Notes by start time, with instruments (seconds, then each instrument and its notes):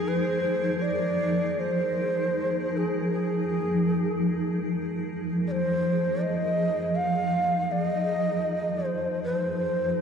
Already playing: ambient pad F3 D#4 G#4 A#4, synth texture G#6
0.08 shakuhachi C5
0.82 shakuhachi D5
1.60 shakuhachi C5
2.77 shakuhachi G#4
3.12 shakuhachi G#4
5.47 shakuhachi D5
5.51 shakuhachi C5
6.21 shakuhachi D#5
6.95 shakuhachi F5
7.72 shakuhachi D#5
8.85 shakuhachi C5
9.23 shakuhachi B4
9.35 shakuhachi C5